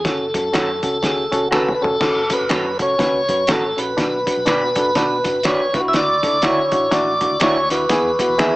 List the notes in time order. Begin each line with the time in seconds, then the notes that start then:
0.05 F#1 C#4 F#4 A4, kick, snare, closed hi-hat
0.34 F#2 C#4 F#4 A4, kick, closed hi-hat
0.53 F#2 C#4 F#4 A4 C#5, finger snap, snare, closed hi-hat
0.83 C#2 C#4 F#4 A4, kick, closed hi-hat
1.03 C#4 F#4 G#4, kick, snare, closed hi-hat
1.32 C#2 C#4 F#4 A4 F#5, kick, closed hi-hat
1.51 C#4 F#4 A4 B4 C#5 A5, finger snap, snare
1.68 mid tom
1.75 B4
1.81 F1 C#4 F#4 A4, floor tom
2.00 F#1 C#4 F#4 A4, kick, snare, crash
2.30 C#4 F#4 A4 B4, kick, closed hi-hat
2.40 F#1
2.49 F#2 C#4 F#4 A4 B4 C#5, finger snap, snare, closed hi-hat
2.79 C#2 C#4 F#4 A4 C#5, kick, closed hi-hat
2.99 C#2 C#4 F#4 B4, kick, snare, closed hi-hat
3.28 F#2 C#4 F#4 B4, kick, closed hi-hat
3.47 A1 C#4 F#4 A4 C#5, finger snap, snare, closed hi-hat
3.77 A#1 C#4 F#4 B4, closed hi-hat
3.97 B1 D4 F#4 B4, kick, snare, closed hi-hat
4.26 D4 F#4 B4, kick, closed hi-hat
4.37 B1
4.46 B2 D4 F#4 B4 D5, finger snap, snare, closed hi-hat
4.75 F#1 D4 F#4 A4, kick, closed hi-hat
4.95 B2 D4 F#4 B4, kick, snare, closed hi-hat
5.24 F#1 D4 F#4 B4, kick, closed hi-hat
5.43 D4 F#4 B4 C#5 D5 C#6, finger snap, snare, closed hi-hat
5.73 D2 D4 E4 F4 B4 B5, kick, snare, closed hi-hat
5.80 F#4
5.85 C#2 E5
5.89 E6
5.93 D2 D5 D6, snare, closed hi-hat
6.23 D4 E4 A4, kick, closed hi-hat
6.33 D2
6.42 D3 D4 E4 F#4 C#5 D5 C#6, finger snap, snare, closed hi-hat
6.72 A1 D4 E4 F#4, kick, closed hi-hat
6.91 A1 D4 E4 F#4 D5 D6, kick, snare, closed hi-hat
7.21 D4 E4 F#4, kick, closed hi-hat
7.31 D2
7.40 D2 D4 E4 F#4 C#5 D5 C#6, finger snap, snare, closed hi-hat
7.70 D#2 D4 E4 F#4 B4 B5, snare, closed hi-hat
7.89 E2 B3 E4 G#4, kick, snare, closed hi-hat
8.19 B3 E4 F#4, kick, closed hi-hat
8.28 E2
8.38 E3 B3 E4 G#4 B4 E5, finger snap, snare, closed hi-hat